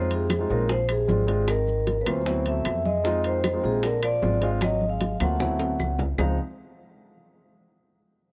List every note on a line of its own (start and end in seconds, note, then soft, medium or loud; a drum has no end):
0.00 0.44 F2 medium
0.00 0.25 G#3 medium
0.00 0.25 C4 medium
0.00 0.26 D#4 medium
0.00 0.26 F4 medium
0.10 0.47 C3 medium
0.10 0.52 G#4 medium
0.10 high conga soft
0.10 high timbale medium
0.10 maracas medium
0.30 high bongo medium
0.30 high conga loud
0.30 high timbale medium
0.30 claves medium
0.30 maracas medium
0.39 0.46 G#3 medium
0.39 0.47 C4 medium
0.39 0.47 D#4 medium
0.39 0.47 F4 medium
0.49 1.05 A#1 loud
0.49 0.68 C#3 medium
0.49 0.69 G#3 medium
0.49 0.70 C4 medium
0.49 0.70 D#4 medium
0.49 0.70 F4 medium
0.49 0.69 A#4 medium
0.49 high bongo soft
0.49 high conga soft
0.49 maracas soft
0.69 0.88 F3 medium
0.69 0.89 C5 medium
0.69 high bongo medium
0.69 high conga soft
0.69 high timbale medium
0.69 maracas medium
0.89 1.26 C3 medium
0.89 1.27 G#4 medium
0.89 high bongo soft
0.89 high conga soft
0.89 high timbale medium
0.89 claves medium
0.89 maracas medium
1.08 2.01 G#1 medium
1.08 1.22 G#3 medium
1.08 1.22 C4 medium
1.08 1.23 D4 medium
1.08 1.23 F4 medium
1.08 high bongo soft
1.08 low bongo medium
1.08 high conga medium
1.08 maracas medium
1.27 1.47 C3 medium
1.27 1.47 G#3 medium
1.27 1.47 C4 medium
1.27 1.48 D4 medium
1.27 1.48 F4 medium
1.27 1.48 G#4 medium
1.27 high bongo soft
1.27 high timbale medium
1.27 maracas soft
1.48 1.96 D#3 medium
1.48 2.02 A#4 loud
1.48 high bongo medium
1.48 high conga soft
1.48 high timbale medium
1.48 claves medium
1.48 maracas medium
1.67 high conga soft
1.67 maracas medium
1.87 high bongo medium
1.87 high conga medium
1.87 high timbale medium
1.87 maracas medium
2.00 2.06 C#3 medium
2.00 2.08 B4 medium
2.06 2.61 D2 medium
2.06 2.43 E3 medium
2.06 2.20 F#3 medium
2.06 2.20 A#3 medium
2.06 2.20 C4 medium
2.06 2.21 F4 medium
2.06 2.48 C5 medium
2.06 high bongo soft
2.06 high conga soft
2.06 high timbale loud
2.06 claves medium
2.06 maracas soft
2.25 2.81 F#3 medium
2.25 2.81 B3 medium
2.25 2.81 C4 medium
2.25 2.81 E4 medium
2.25 high bongo medium
2.25 high conga soft
2.25 maracas medium
2.46 2.83 A3 medium
2.46 2.87 E5 loud
2.46 high bongo soft
2.46 high conga soft
2.46 high timbale medium
2.46 maracas medium
2.65 3.58 F2 medium
2.65 high bongo soft
2.65 low bongo medium
2.65 high conga soft
2.65 high timbale medium
2.65 claves medium
2.65 maracas medium
2.85 3.22 G#3 medium
2.85 3.22 D#5 medium
2.85 high bongo soft
2.85 high conga medium
2.85 maracas soft
3.04 3.39 G#3 medium
3.04 3.39 C4 medium
3.04 3.39 D#4 medium
3.04 3.40 F4 medium
3.04 high bongo medium
3.04 high conga soft
3.04 maracas medium
3.24 3.61 D#3 medium
3.24 3.66 C5 loud
3.24 high conga soft
3.24 high timbale medium
3.24 maracas medium
3.44 high bongo medium
3.44 high conga medium
3.44 high timbale medium
3.44 claves medium
3.44 maracas medium
3.53 3.60 G#3 medium
3.53 3.61 C4 medium
3.53 3.61 D#4 medium
3.53 3.61 F4 medium
3.63 4.18 A#1 medium
3.63 3.82 C3 medium
3.63 3.83 G#3 medium
3.63 3.83 C4 medium
3.63 3.83 D#4 medium
3.63 3.84 F4 medium
3.63 3.83 G#4 medium
3.63 high bongo soft
3.63 high conga soft
3.63 maracas soft
3.83 4.02 D3 medium
3.83 4.04 A#4 loud
3.83 high bongo medium
3.83 high conga soft
3.83 high timbale medium
3.83 maracas medium
4.03 4.39 F3 medium
4.03 4.44 D5 loud
4.03 high bongo soft
4.03 high conga soft
4.03 high timbale medium
4.03 claves medium
4.22 5.14 G#1 medium
4.22 4.36 G#3 medium
4.22 4.36 C4 medium
4.22 4.36 D4 medium
4.22 4.37 F4 medium
4.22 high bongo soft
4.22 low bongo medium
4.22 high conga medium
4.22 maracas medium
4.41 4.61 G#3 medium
4.41 4.51 G#3 medium
4.41 4.61 C4 medium
4.41 4.62 D4 medium
4.41 4.62 F4 medium
4.41 4.53 F5 medium
4.41 high bongo soft
4.41 high conga soft
4.41 high timbale medium
4.41 maracas soft
4.61 4.86 F#3 medium
4.61 4.87 D#5 loud
4.61 high bongo medium
4.61 high conga medium
4.61 high timbale medium
4.61 claves medium
4.61 maracas medium
4.81 high conga medium
4.88 5.18 G#3 medium
4.88 5.22 F5 loud
5.00 high bongo medium
5.00 high conga medium
5.00 high timbale medium
5.00 maracas medium
5.20 5.75 D2 medium
5.20 5.34 F#3 medium
5.20 5.95 A3 medium
5.20 5.34 A#3 medium
5.20 5.35 C4 medium
5.20 5.35 F4 medium
5.20 5.96 F#5 medium
5.20 high bongo soft
5.20 high conga medium
5.20 high timbale medium
5.20 claves medium
5.20 maracas soft
5.39 5.95 F#3 medium
5.39 5.95 B3 medium
5.39 5.95 C4 medium
5.39 5.96 E4 medium
5.39 high bongo medium
5.39 low conga medium
5.39 maracas medium
5.59 high bongo soft
5.59 high timbale medium
5.79 6.14 C#2 medium
5.79 high bongo soft
5.79 low bongo medium
5.79 claves medium
5.79 maracas medium
5.99 high bongo soft
5.99 low conga medium
5.99 low timbale medium
5.99 maracas soft
6.18 6.37 C#2 medium
6.18 6.37 G#2 medium
6.18 6.37 F3 medium
6.18 6.37 G#3 medium
6.18 6.37 C4 medium
6.18 6.37 D#4 medium
6.18 6.38 F5 medium
6.18 low bongo medium
6.18 low conga medium
6.18 low timbale medium
6.18 claves medium
6.18 maracas loud